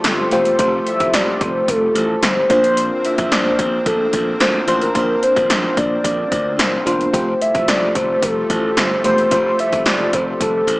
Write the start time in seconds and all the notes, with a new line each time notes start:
Already playing: F3 G3 A3 F4 G4 C5
0.04 G1 C5, snare, closed hi-hat
0.31 E1 A3 F4 G4 C5, closed hi-hat
0.45 closed hi-hat
0.59 F1 A3 F4 G4 C5, kick, closed hi-hat
0.87 E5, closed hi-hat
1.00 F1, kick, closed hi-hat
1.14 F1 D5, snare, closed hi-hat
1.41 F1 C5, kick, closed hi-hat
1.68 F1 A4, kick, closed hi-hat
1.95 A1, closed hi-hat
2.22 G1 C5, snare, closed hi-hat
2.49 A#1 D3 A#3 C4 D4 F4 C5, kick, closed hi-hat
2.64 closed hi-hat
2.77 closed hi-hat
3.05 E5, closed hi-hat
3.18 A#1, kick, closed hi-hat
3.31 A#1 D5, snare, closed hi-hat
3.59 A#1 C5, kick, closed hi-hat
3.86 A#1 A4, kick, closed hi-hat
4.13 A#1, kick, closed hi-hat
4.40 D2 C5, snare, closed hi-hat
4.67 A1 A#3 D4 F4 C5, closed hi-hat
4.82 A#4, closed hi-hat
4.94 A#1 A#3 D4 F4 A#4 C5, kick, closed hi-hat
5.23 C5, closed hi-hat
5.36 A#1, kick, closed hi-hat
5.50 A#1, snare, closed hi-hat
5.77 A#1 D5, kick, closed hi-hat
6.04 A#1, kick, closed hi-hat
6.32 D2, kick, closed hi-hat
6.59 C2 C5, snare, closed hi-hat
6.86 E1 A#3 D4 F4 C5, closed hi-hat
7.01 closed hi-hat
7.13 F1 F3 G3 A3 F4 G4 C5, kick, closed hi-hat
7.42 E5, closed hi-hat
7.55 F1, kick, closed hi-hat
7.68 F1 D5, snare, closed hi-hat
7.95 F1 C5, kick, closed hi-hat
8.22 F1 A4, kick, closed hi-hat
8.50 A1, kick, closed hi-hat
8.77 G1 C5, snare, closed hi-hat
9.04 E1 A3 F4 G4 C5, closed hi-hat
9.18 closed hi-hat
9.31 F1 A3 F4 G4 C5, kick, closed hi-hat
9.59 E5, closed hi-hat
9.73 F1, kick, closed hi-hat
9.85 F1 D5, snare, closed hi-hat
10.13 F1 C5, kick, closed hi-hat
10.41 F1 A4, kick, closed hi-hat
10.67 A1, closed hi-hat